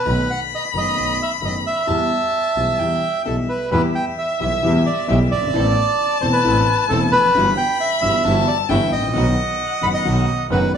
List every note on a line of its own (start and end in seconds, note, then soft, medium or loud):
0.00 0.30 B4 medium
0.06 0.25 B1 medium
0.06 0.25 B2 medium
0.06 0.25 D#3 medium
0.06 0.25 A3 medium
0.06 0.25 B3 medium
0.06 0.25 F#4 medium
0.06 1.89 B5 medium
0.30 0.40 F#5 medium
0.55 0.64 D#5 medium
0.74 0.93 F#1 soft
0.74 0.93 F#1 medium
0.74 0.93 F#2 soft
0.74 0.93 D#3 soft
0.74 0.93 A3 soft
0.74 0.93 B3 soft
0.74 0.93 F#4 soft
0.74 1.18 D#5 medium
0.96 1.16 B1 soft
0.96 1.16 B1 medium
0.96 1.16 B2 soft
0.96 1.15 D#3 soft
0.96 1.16 A3 soft
0.96 1.16 B3 soft
0.96 1.16 F#4 soft
1.22 1.32 E5 medium
1.41 1.61 F#1 soft
1.41 1.61 F#1 medium
1.41 1.61 F#2 soft
1.41 1.61 D#3 soft
1.41 1.61 A3 soft
1.41 1.61 B3 soft
1.41 1.61 F#4 soft
1.45 1.55 D#5 medium
1.67 3.22 E5 medium
1.87 2.06 E2 medium
1.87 2.07 E2 medium
1.87 2.07 E3 medium
1.87 2.06 G3 medium
1.87 2.07 B3 medium
1.87 2.07 G4 medium
1.87 2.81 A5 medium
2.56 2.76 B1 soft
2.56 2.76 B2 soft
2.56 2.76 E3 soft
2.56 2.75 G3 soft
2.56 2.76 B3 soft
2.56 2.76 G4 soft
2.79 2.99 E2 soft
2.79 2.99 E2 medium
2.79 2.99 E3 soft
2.79 2.99 G3 soft
2.79 2.99 B3 soft
2.79 2.99 G4 soft
2.79 3.26 G5 medium
3.25 3.45 B1 soft
3.25 3.46 B1 soft
3.25 3.45 B2 soft
3.25 3.45 E3 soft
3.25 3.45 G3 soft
3.25 3.45 B3 soft
3.25 3.45 G4 soft
3.25 3.36 A4 medium
3.25 3.70 E5 medium
3.49 3.70 B4 medium
3.71 3.91 E2 medium
3.71 3.91 E3 medium
3.71 3.91 G3 medium
3.71 3.91 B3 medium
3.71 3.91 E4 medium
3.71 3.91 G4 medium
3.71 3.82 B4 medium
3.71 5.55 E5 medium
3.95 4.05 G5 medium
4.18 4.39 E5 medium
4.40 4.59 B1 medium
4.40 4.60 B1 medium
4.40 4.59 B2 soft
4.40 4.59 E3 soft
4.40 4.59 G3 soft
4.40 4.59 B3 soft
4.40 4.60 E4 soft
4.40 4.59 G4 soft
4.40 4.60 G4 soft
4.40 4.83 E5 medium
4.63 4.82 E2 medium
4.63 4.83 E2 medium
4.63 4.82 E3 medium
4.63 4.82 G3 medium
4.63 4.82 B3 medium
4.63 4.82 E4 medium
4.63 4.82 G4 medium
4.86 5.07 D5 medium
5.08 5.27 B1 medium
5.08 5.28 B1 medium
5.08 5.27 B2 medium
5.08 5.27 E3 medium
5.08 5.27 G3 medium
5.08 5.27 B3 medium
5.08 5.28 B3 medium
5.08 5.28 E4 medium
5.08 5.27 G4 medium
5.08 5.28 G4 medium
5.08 5.19 E5 medium
5.31 5.54 G1 soft
5.31 6.18 D5 medium
5.36 5.42 F#1 soft
5.42 5.48 G1 medium
5.48 5.54 G#1 medium
5.53 5.73 A1 medium
5.53 5.73 A2 medium
5.53 5.73 C3 medium
5.53 5.73 A3 medium
5.53 5.73 B3 medium
5.53 5.73 C4 medium
5.53 5.73 E4 medium
5.53 5.73 A4 medium
5.53 7.36 A5 medium
6.21 6.41 E1 medium
6.21 6.41 E2 medium
6.21 6.40 C3 soft
6.21 6.41 A3 soft
6.21 6.41 B3 soft
6.21 6.41 C4 soft
6.21 6.41 E4 soft
6.21 6.41 A4 soft
6.21 6.27 C5 medium
6.32 6.85 B4 medium
6.44 6.63 A1 medium
6.44 6.63 A2 medium
6.44 6.63 C3 medium
6.44 6.64 A3 medium
6.44 6.63 B3 medium
6.44 6.64 B3 medium
6.44 6.64 C4 medium
6.44 6.64 E4 medium
6.44 6.64 A4 medium
6.89 7.09 E1 medium
6.89 7.09 E2 medium
6.89 7.09 C3 medium
6.89 7.09 A3 medium
6.89 7.09 B3 medium
6.89 7.09 C4 medium
6.89 7.09 E4 medium
6.89 7.00 A4 medium
6.89 7.09 A4 medium
7.12 7.34 F1 medium
7.12 7.54 B4 medium
7.18 7.24 E2 soft
7.24 7.29 F2 medium
7.30 7.35 F#2 medium
7.34 7.54 G1 medium
7.34 7.54 G2 medium
7.34 7.53 E3 medium
7.34 7.53 G3 medium
7.34 7.54 G3 medium
7.34 7.54 B3 medium
7.34 7.54 E4 medium
7.34 7.54 F#4 medium
7.34 8.26 B5 loud
7.57 7.78 G5 medium
7.80 8.00 E5 medium
8.02 8.21 G1 medium
8.02 8.21 G2 medium
8.02 8.21 E3 soft
8.02 8.21 G3 soft
8.02 8.21 B3 soft
8.02 8.22 E4 soft
8.02 8.21 F#4 soft
8.02 8.22 F#4 soft
8.02 8.48 E5 medium
8.24 8.43 G1 medium
8.24 8.43 G2 medium
8.24 8.43 E3 medium
8.24 8.43 G3 medium
8.24 8.44 G3 medium
8.24 8.43 B3 medium
8.24 8.44 E4 medium
8.24 8.43 F#4 medium
8.24 8.44 F#4 medium
8.24 8.71 A5 loud
8.48 8.58 D5 medium
8.69 8.88 G1 medium
8.69 8.88 G2 medium
8.69 8.88 E3 medium
8.69 8.88 G3 medium
8.69 8.89 G3 medium
8.69 8.88 B3 medium
8.69 8.89 E4 medium
8.69 8.88 F#4 medium
8.69 8.89 F#4 medium
8.69 8.91 E5 medium
8.69 9.14 G5 medium
8.92 9.14 A1 medium
8.92 9.85 D#5 medium
8.98 9.03 G#1 soft
9.02 9.08 A1 medium
9.08 9.14 A#1 medium
9.13 9.33 B1 medium
9.13 9.33 B2 medium
9.13 9.33 D#3 medium
9.13 9.33 F#3 medium
9.13 9.33 B3 medium
9.13 9.34 B3 medium
9.13 9.34 D#4 medium
9.13 9.33 F#4 medium
9.13 9.34 F#4 medium
9.13 10.70 F#5 medium
9.81 10.01 F#1 medium
9.81 10.01 F#2 medium
9.81 10.01 D#3 soft
9.81 10.01 F#3 soft
9.81 10.01 B3 soft
9.81 10.02 B3 soft
9.81 10.02 D#4 soft
9.81 10.01 F#4 soft
9.81 10.02 F#4 soft
9.81 9.88 B5 medium
9.94 10.47 D#5 medium
10.05 10.24 B1 medium
10.05 10.24 B2 medium
10.05 10.24 D#3 medium
10.05 10.24 F#3 medium
10.05 10.24 B3 medium
10.05 10.25 D#4 medium
10.05 10.24 F#4 medium
10.05 10.25 F#4 medium
10.50 10.70 F#1 medium
10.50 10.70 F#2 medium
10.50 10.70 D#3 medium
10.50 10.70 F#3 medium
10.50 10.70 B3 medium
10.50 10.70 D#4 medium
10.50 10.70 F#4 medium
10.50 10.72 B4 medium
10.74 10.77 D2 soft
10.74 10.77 D5 medium